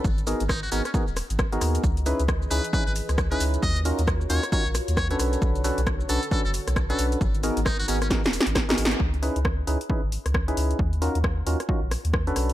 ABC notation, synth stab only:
X:1
M:4/4
L:1/16
Q:"Swing 16ths" 1/4=134
K:C#dor
V:1 name="Synth stab"
z2 [B,DFGA] z3 [B,DFGA] z [B,DFGA] z4 [B,DFGA]3 | z2 [CDEGB] z3 [CDEGB] z [CDEGB] z4 [CDEGB]3 | z2 [CD^EFA] z3 [CDEFA] z [CDEFA] z4 [C=DF=AB]3- | [C=DF=AB]2 [CDFAB] z3 [CDFAB] z [CDFAB] z4 [CDFAB]3 |
z2 [B,DFGA] z3 [B,DFGA] z [B,DFGA] z4 [B,DFGA]3 | z2 [CDEGB] z3 [CDEGB] z [CDEGB] z4 [CDEGB]3 | z2 [CD^EFA] z3 [CDEFA] z [CDEFA] z4 [C=DF=AB]3 |]